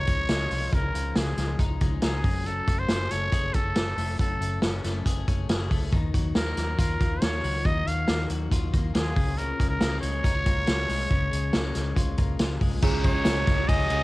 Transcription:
Already playing: C#3 F3 D#4 C#5
0.07 C#2 G#3, kick, closed hi-hat
0.28 C#2 D#4, snare, closed hi-hat
0.51 C2 F3, open hi-hat
0.72 C#2 C#3 A#4, kick, closed hi-hat
0.94 C#2 F3, closed hi-hat
1.16 C#2 G#3 G#4, snare, closed hi-hat
1.37 C#2 F3, snare, closed hi-hat
1.59 C#2 D#4, kick, closed hi-hat
1.80 C#2 G#3, kick, closed hi-hat
2.02 C#2 D#4 G#4, snare, closed hi-hat
2.24 F#1 F#2, kick, open hi-hat
2.46 F#2 A4, closed hi-hat
2.68 F#1 A3, kick, closed hi-hat
2.79 C5
2.88 F#1 C#4, snare, closed hi-hat
3.11 F#1 A3 C#5, closed hi-hat
3.32 F#1 G#4, kick, closed hi-hat
3.54 F#1 C#4 A4, kick, closed hi-hat
3.75 F#1, snare, closed hi-hat
3.97 F1 A3, open hi-hat
4.19 F#1 F#2 A4, kick, closed hi-hat
4.41 F#1 A3, closed hi-hat
4.62 F#1 C#4, snare, closed hi-hat
4.84 F#1 A3, snare, closed hi-hat
5.06 F#1 G#4, kick, closed hi-hat
5.28 F#1 C#4, kick, closed hi-hat
5.49 F#1 G#4, snare, closed hi-hat
5.71 C#2 A3, kick, open hi-hat
5.93 D#2 D#3, kick, closed hi-hat
6.14 D#2 F#3, kick, closed hi-hat
6.35 D#2 G#3 A#4, snare, closed hi-hat
6.46 A#3
6.57 D#2 F#3, snare, closed hi-hat
6.79 D#2 F4 A#4, kick, closed hi-hat
7.00 D#2 A#3, kick, closed hi-hat
7.22 D#2 F4 C#5, snare, closed hi-hat
7.43 C#2 F#3, open hi-hat
7.65 D#2 D#3 D#5, kick, closed hi-hat
7.86 D#2 F#3 F5, closed hi-hat
8.08 D#2 A#3, snare, closed hi-hat
8.30 D#2 F#3, closed hi-hat
8.51 D#2 F4, kick, closed hi-hat
8.73 D#2 A#3, kick, closed hi-hat
8.95 D#2 F4 G#4, snare, closed hi-hat
9.16 C#2 C#3, kick, open hi-hat
9.37 C#3 A#4, closed hi-hat
9.60 C#2 G#3, kick, closed hi-hat
9.69 A#4
9.81 C#2 G#3, snare, closed hi-hat
9.92 A#3
10.01 C#2 G#3 C#5, closed hi-hat
10.24 C#2 D#4, kick, closed hi-hat
10.35 F4
10.45 C#2 A#3, kick, closed hi-hat
10.67 C#2 F4, snare, closed hi-hat
10.89 C2 G#3, open hi-hat
11.10 C#2 C#3, kick, closed hi-hat
11.31 C#2 G#3, closed hi-hat
11.53 C#2 G#3, snare, closed hi-hat
11.64 A#3
11.75 C#2 G#3, snare, closed hi-hat
11.96 C#2 F4, kick, closed hi-hat
12.17 C#2 A#3, kick, closed hi-hat
12.39 C#2 F4, snare, closed hi-hat
12.61 C2 G#3, kick, open hi-hat
12.82 C#2 C#3 F3 G#3 C#4 F4 G#4 A#5, kick, crash, tambourine
13.04 G#3 C#5, kick, ride, tambourine
13.15 G#3 C#4 G#4
13.25 C#2 C#4, snare, ride, tambourine
13.47 C#2 G#3, kick, snare, ride, tambourine
13.68 C#2 F3 G#3 C#4 G#4 D#5 G#5, kick, ride
13.90 C#2 F3 G#3 C#4 G#4, ride, tambourine

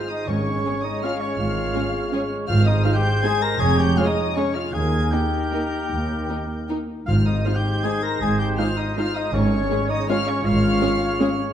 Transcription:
Already playing: G#3 F4 G#4 C5 F6
0.09 D#4 D#5 D#6
0.27 G#1 G#2 G#3 C#4 G#4 C#5 C#6
0.64 G#3 C#4 G#4 C#5
0.83 D#4 D#5 D#6
1.02 G#3 C#4 F4 G#4 C#5 F5 F6
1.20 C#4 C#5 C#6
1.38 G#1 G#2 F4 F5 F6
1.74 G#3 C#4 G#4 C#5
2.12 G#3 C#4 G#4 C#5
2.48 G#1 G#2 G#3 F4 G#4 C5 F5 F6
2.65 D#4 D#5 D#6
2.84 G#3 D#4 F4 G#4 C5 F5 F6
2.93 G4 G5 G6
3.23 G#3 D#4 G#4 C5 G#5 G#6
3.42 A#4 A#5 A#6
3.59 F1 F2 G#4 C#5 G#5 G#6
3.77 G4 G5 G6
3.97 G#3 C#4 F4 G#4 C#5 F5 F6
4.06 D#4 D#5 D#6
4.36 G#3 C#4 G#4 C#5 C#6
4.54 F4 F5 F6
4.73 D#2 A#3 D#4 G#4 A#4 G#5 G#6
5.11 A#3 D#4 G4 A#4 G5 G6
5.52 A#3 D#4 A#4
5.90 D#2
6.29 A#3 D#4 A#4
6.69 A#3 D#4 A#4
7.06 G#1 G#2 G#3 D#4 F4 C5 F5 F6
7.25 D#4 D#5 D#6
7.45 G#3 D#4 F4 C5 F5 F6
7.55 G4 G5 G6
7.83 G#3 D#4 G#4 C5 G#5 G#6
8.03 A#4 A#5 A#6
8.21 G#1 G#2 G#4 G#5 G#6
8.39 G4 G5 G6
8.58 G#3 D#4 F4 C5 F5 F6
8.77 D#4 D#5 D#6
8.96 G#3 D#4 F4 C5 F5 F6
9.14 D#4 D#5 D#6
9.33 G#1 G#2 G#3 C#4 C#5 C#6
9.70 G#3 C#4 G#4 C#5
9.90 D#4 D#5 D#6
10.09 G#3 C#4 F4 G#4 C#5 F5 F6
10.27 C#4 C#5 C#6
10.44 G#1 G#2 F4 F5 F6
10.81 G#3 C#4 G#4 C#5
11.20 G#3 C#4 G#4 C#5

